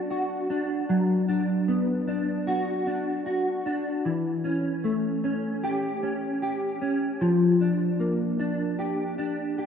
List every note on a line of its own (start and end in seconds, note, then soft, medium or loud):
0.00 0.88 F#3 medium
0.00 1.67 B3 medium
0.00 0.49 D4 medium
0.10 2.46 F#4 medium
0.50 1.27 D4 medium
0.89 4.05 F#3 medium
1.28 2.06 D4 medium
1.68 4.13 B3 medium
2.08 2.86 D4 medium
2.47 3.25 F#4 medium
2.87 3.65 D4 medium
3.26 4.13 F#4 medium
3.66 4.13 D4 medium
4.05 7.21 E3 medium
4.44 5.23 C#4 medium
4.84 7.29 A3 medium
5.24 6.02 C#4 medium
5.63 6.42 G4 medium
6.03 6.80 C#4 medium
6.42 8.78 G4 medium
6.82 7.29 C#4 medium
7.21 9.66 F3 medium
7.61 8.39 D4 soft
8.00 9.66 A#3 soft
8.39 9.18 D4 medium
8.79 9.58 G4 medium
9.18 9.66 D4 medium
9.58 9.66 G4 soft